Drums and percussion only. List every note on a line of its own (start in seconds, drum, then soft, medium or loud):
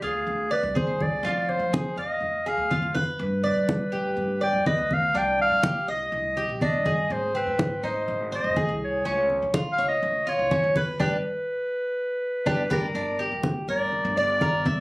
0.03 high conga soft
0.28 high conga soft
0.52 high conga soft
0.76 high conga medium
1.00 high conga medium
1.25 high conga soft
1.49 high conga soft
1.74 high conga medium
1.98 high conga soft
2.22 high conga soft
2.46 high conga soft
2.71 high conga medium
2.95 high conga medium
3.20 high conga soft
3.44 high conga soft
3.69 high conga medium
3.93 high conga soft
4.17 high conga soft
4.42 high conga soft
4.66 high conga medium
4.91 high conga medium
5.15 high conga soft
5.39 high conga soft
5.63 high conga medium
5.88 high conga soft
6.12 high conga soft
6.37 high conga soft
6.61 high conga medium
6.86 high conga medium
7.10 high conga soft
7.35 high conga soft
7.59 high conga medium
7.84 high conga soft
8.08 high conga soft
8.31 high conga soft
8.56 high conga medium
9.05 high conga soft
9.30 high conga soft
9.54 high conga medium
9.79 high conga soft
10.03 high conga soft
10.27 high conga soft
10.51 high conga medium
10.76 high conga medium
11.00 high conga medium
12.47 high conga medium
12.71 high conga loud
12.95 high conga soft
13.19 high conga soft
13.43 high conga medium
13.68 high conga soft
13.92 high conga soft
14.17 high conga soft
14.41 high conga medium
14.66 high conga medium